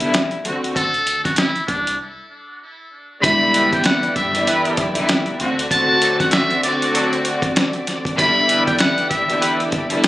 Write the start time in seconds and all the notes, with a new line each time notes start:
Already playing: B1
0.00 D3 G3 B3 E4, closed hi-hat
0.14 snare, closed hi-hat
0.31 closed hi-hat
0.45 D2 D3 A3 C4 F#4, closed hi-hat
0.64 closed hi-hat
0.76 A4, kick, closed hi-hat
0.94 closed hi-hat
1.07 closed hi-hat
1.24 F#4, kick, snare, closed hi-hat
1.36 E4, snare, closed hi-hat
1.56 muted upright bass stroke, closed hi-hat
1.67 C2 D4, kick, closed hi-hat
1.87 closed hi-hat
3.22 E1 D3 E3 G3 B3 E4 G4 D5 B5, kick, closed hi-hat
3.54 G3 E4 B4, closed hi-hat
3.73 G5, kick, closed hi-hat
3.84 F#5, snare, closed hi-hat
4.03 muted upright bass stroke, closed hi-hat
4.16 G1 E5, kick, closed hi-hat
4.34 D3 G3 B3 E4, closed hi-hat
4.47 G3 E4 B4, closed hi-hat
4.65 closed hi-hat
4.77 B1, kick, closed hi-hat
4.94 D3 G3 B3 E4, closed hi-hat
5.09 snare, closed hi-hat
5.26 closed hi-hat
5.40 D2 D3 A3 C4 F#4 D5, closed hi-hat
5.59 closed hi-hat
5.71 D3 A3 C4 F#4 A5, kick, closed hi-hat
6.02 F#3 D4 A4, closed hi-hat
6.20 F#5, kick, snare, closed hi-hat
6.31 E5, snare, closed hi-hat
6.51 closed hi-hat
6.63 D3 A3 C4 F#4 D5, closed hi-hat
6.82 closed hi-hat
6.94 F#3 D4 A4, closed hi-hat
7.13 closed hi-hat
7.25 closed hi-hat
7.42 kick, closed hi-hat
7.56 snare, closed hi-hat
7.73 closed hi-hat
7.87 snare, closed hi-hat
8.05 kick, closed hi-hat
8.17 D3 E3 G3 B3 E4 G4 B5, kick, closed hi-hat
8.49 G3 E4 B4, closed hi-hat
8.66 G5, kick, closed hi-hat
8.79 F#5, snare, closed hi-hat
8.98 closed hi-hat
9.10 E5, kick, closed hi-hat
9.29 D3 G3 B3 E4, closed hi-hat
9.41 G3 E4 B4, closed hi-hat
9.60 closed hi-hat
9.72 kick, closed hi-hat
9.89 D3 G3 B3 E4, closed hi-hat
10.04 snare, closed hi-hat